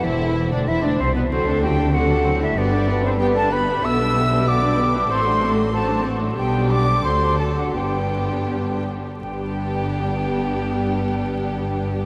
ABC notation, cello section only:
X:1
M:2/4
L:1/16
Q:1/4=93
K:G
V:1 name="Cello section" clef=bass
E,,3 D,, E,, D,, C,, B,, | D,8 | G,,8 | B,,8 |
A,,8 | B,,4 D,4 | G,,6 z2 | G,,8- |
G,,8 |]